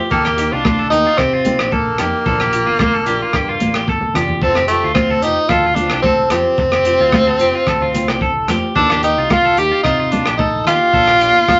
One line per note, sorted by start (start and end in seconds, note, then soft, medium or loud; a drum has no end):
0.11 0.49 D#2 medium
0.11 0.54 A#3 medium
0.11 0.28 D#4 medium
0.11 0.28 G4 medium
0.11 0.25 A4 medium
0.11 muted steel-string acoustic guitar stroke medium
0.11 kick medium
0.11 muted conga soft
0.25 0.37 G4 medium
0.25 cross-stick medium
0.37 0.56 A#3 soft
0.37 0.55 D#4 soft
0.37 0.54 G4 soft
0.37 0.52 G4 medium
0.37 closed hi-hat soft
0.52 0.89 C2 medium
0.52 0.90 D4 medium
0.52 0.64 F4 medium
0.65 0.78 F4 medium
0.65 kick medium
0.65 cross-stick medium
0.65 muted conga soft
0.65 high conga medium
0.79 0.91 A4 medium
0.90 1.05 D#2 medium
0.90 1.09 A#3 soft
0.90 1.19 D#4 loud
0.90 1.08 D#4 soft
0.90 1.08 G4 medium
0.90 muted clean electric guitar stroke medium
0.90 closed hi-hat soft
1.07 1.18 F4 medium
1.18 1.56 C3 medium
1.18 1.74 C4 medium
1.18 1.32 G4 medium
1.18 kick medium
1.18 cross-stick medium
1.18 muted conga soft
1.33 1.59 F4 medium
1.45 1.63 A#3 soft
1.45 1.62 D#4 soft
1.45 1.62 G4 soft
1.45 closed hi-hat soft
1.45 high conga medium
1.59 1.97 A#1 medium
1.59 1.72 G4 medium
1.59 cross-stick medium
1.72 1.99 A#3 medium
1.72 1.98 A4 medium
1.72 kick medium
1.72 high conga medium
1.98 2.12 F2 medium
1.98 4.11 A#3 medium
1.98 2.17 A#3 soft
1.98 2.17 D#4 soft
1.98 2.16 G4 soft
1.98 2.25 G4 medium
1.98 cross-stick medium
1.98 closed hi-hat soft
2.26 2.64 A#1 medium
2.26 2.42 F3 medium
2.26 2.43 A#3 medium
2.26 2.43 D4 medium
2.26 2.44 F4 medium
2.26 2.39 A4 medium
2.26 kick medium
2.26 muted conga soft
2.40 2.52 G4 medium
2.40 cross-stick medium
2.53 2.71 A#3 soft
2.53 2.70 F4 soft
2.53 2.66 G4 medium
2.53 closed hi-hat medium
2.67 3.04 G1 medium
2.67 2.78 F4 medium
2.79 2.93 F4 medium
2.79 kick medium
2.79 cross-stick medium
2.79 muted conga soft
2.79 high conga medium
2.94 3.06 A4 medium
3.05 3.20 A#1 medium
3.05 3.24 A#3 medium
3.05 3.24 D4 soft
3.05 3.23 F4 medium
3.05 3.20 G4 medium
3.05 closed hi-hat medium
3.22 3.34 F4 medium
3.33 3.59 G2 medium
3.33 3.48 G4 medium
3.33 kick medium
3.33 cross-stick medium
3.33 muted conga soft
3.49 3.74 F4 medium
3.60 3.85 A1 medium
3.60 3.79 A#3 soft
3.60 3.78 D4 soft
3.60 muted steel-string acoustic guitar stroke medium
3.60 closed hi-hat soft
3.60 muted conga soft
3.60 high conga medium
3.74 3.88 G4 medium
3.74 cross-stick medium
3.87 4.12 G1 medium
3.87 4.14 A4 medium
3.87 kick medium
3.87 high conga soft
4.01 high conga medium
4.14 4.39 F1 medium
4.14 4.33 D4 soft
4.14 4.32 F4 medium
4.14 4.41 G4 medium
4.14 cross-stick medium
4.14 closed hi-hat soft
4.14 low conga medium
4.18 4.33 A#3 soft
4.28 low conga medium
4.41 4.80 F1 loud
4.41 4.59 A3 medium
4.41 4.67 C4 medium
4.41 4.56 A4 medium
4.41 muted steel-string acoustic guitar stroke medium
4.41 kick medium
4.41 muted conga soft
4.46 4.60 F4 medium
4.55 4.69 G4 medium
4.55 cross-stick medium
4.67 4.93 A3 medium
4.67 4.86 F4 medium
4.67 4.83 G4 medium
4.67 closed hi-hat soft
4.73 4.88 C4 soft
4.83 5.20 D2 medium
4.83 4.96 F4 medium
4.94 5.25 C4 medium
4.94 5.10 F4 medium
4.94 kick medium
4.94 cross-stick medium
4.94 muted conga soft
4.94 high conga loud
5.10 5.22 A4 medium
5.22 5.35 F1 medium
5.22 5.51 D#4 loud
5.22 5.40 F4 soft
5.22 5.37 G4 medium
5.22 closed hi-hat medium
5.27 5.41 C4 soft
5.49 5.88 D2 medium
5.49 5.76 F4 medium
5.49 5.64 A4 medium
5.49 kick medium
5.49 cross-stick medium
5.67 5.91 F4 medium
5.75 6.02 D4 medium
5.75 5.94 F4 soft
5.75 closed hi-hat soft
5.75 muted conga soft
5.75 high conga medium
5.82 5.96 C4 soft
5.90 6.28 C2 medium
5.90 6.05 G4 medium
5.90 cross-stick medium
6.02 6.28 C4 medium
6.02 6.31 A4 medium
6.02 kick medium
6.02 high conga medium
6.30 6.44 F2 medium
6.30 8.44 C4 loud
6.30 6.49 C4 soft
6.30 6.47 F4 soft
6.30 6.57 G4 medium
6.30 cross-stick medium
6.30 closed hi-hat soft
6.58 6.96 F1 medium
6.58 muted clean electric guitar stroke medium
6.58 kick loud
6.58 muted conga soft
6.72 6.85 G4 medium
6.72 cross-stick medium
6.85 7.04 C4 soft
6.85 7.02 F4 soft
6.85 6.99 G4 medium
6.85 closed hi-hat soft
6.99 7.36 D2 medium
6.99 7.13 F4 medium
7.12 7.27 F4 medium
7.12 kick medium
7.12 cross-stick medium
7.12 muted conga soft
7.12 high conga loud
7.27 7.39 A4 medium
7.38 7.52 F1 medium
7.38 7.56 F4 medium
7.38 7.54 G4 medium
7.38 closed hi-hat medium
7.43 7.58 C4 medium
7.55 7.67 F4 medium
7.67 8.05 D2 medium
7.67 7.81 A4 medium
7.67 kick medium
7.67 cross-stick medium
7.67 muted conga soft
7.82 8.07 F4 medium
7.93 8.12 C4 soft
7.93 8.10 F4 soft
7.93 closed hi-hat medium
7.93 muted conga soft
7.93 high conga medium
8.08 8.45 C2 medium
8.08 8.21 G4 medium
8.08 cross-stick medium
8.21 8.47 A4 medium
8.21 kick medium
8.47 8.61 F2 medium
8.47 8.66 C4 soft
8.47 8.64 F4 medium
8.47 8.75 G4 medium
8.47 cross-stick medium
8.47 closed hi-hat soft
8.47 high conga medium
8.75 9.14 D#2 medium
8.75 8.92 F3 medium
8.75 8.93 A#3 medium
8.75 9.01 D4 loud
8.75 8.93 D#4 medium
8.75 8.93 G4 medium
8.75 8.90 A4 medium
8.75 kick medium
8.90 9.03 G4 medium
8.90 cross-stick medium
9.02 9.21 A#3 soft
9.02 9.20 D#4 soft
9.02 9.33 D#4 loud
9.02 9.19 G4 medium
9.02 9.17 G4 medium
9.02 closed hi-hat soft
9.17 9.54 C2 medium
9.17 9.30 F4 medium
9.30 9.60 F4 loud
9.30 9.44 F4 medium
9.30 kick medium
9.30 cross-stick medium
9.30 muted conga soft
9.30 high conga loud
9.45 9.57 A4 medium
9.56 9.70 D#2 medium
9.56 9.75 A#3 soft
9.56 9.74 D#4 soft
9.56 9.73 G4 medium
9.56 9.71 G4 medium
9.56 9.83 G4 loud
9.56 closed hi-hat soft
9.71 9.84 F4 medium
9.83 10.23 C3 medium
9.83 10.13 D#4 medium
9.83 9.98 F4 medium
9.83 kick medium
9.83 cross-stick medium
9.83 muted conga soft
10.00 10.25 F4 medium
10.11 10.29 A#3 soft
10.11 10.36 D4 medium
10.11 10.29 D#4 soft
10.11 muted steel-string acoustic guitar stroke medium
10.11 closed hi-hat soft
10.11 muted conga soft
10.11 high conga medium
10.26 10.63 A#1 medium
10.26 10.38 G4 medium
10.26 cross-stick medium
10.37 10.63 D#4 medium
10.37 10.65 A4 medium
10.37 kick medium
10.37 high conga medium
10.65 10.79 D#3 medium
10.65 10.84 A#3 soft
10.65 10.84 D#4 soft
10.65 11.60 F4 loud
10.65 10.83 G4 medium
10.65 10.93 G4 medium
10.65 cross-stick medium
10.65 closed hi-hat soft
10.93 11.32 A#1 medium
10.93 11.11 F3 medium
10.93 11.11 A#3 medium
10.93 11.12 D4 medium
10.93 11.07 A4 medium
10.93 kick medium
10.93 muted conga soft
11.07 11.20 G4 medium
11.07 cross-stick medium
11.21 11.39 A#3 soft
11.21 11.37 D4 medium
11.21 11.34 G4 medium
11.21 closed hi-hat soft
11.35 11.60 G1 medium
11.35 11.48 F4 medium
11.48 11.60 F4 medium
11.48 kick medium
11.48 cross-stick medium
11.48 muted conga soft
11.48 high conga medium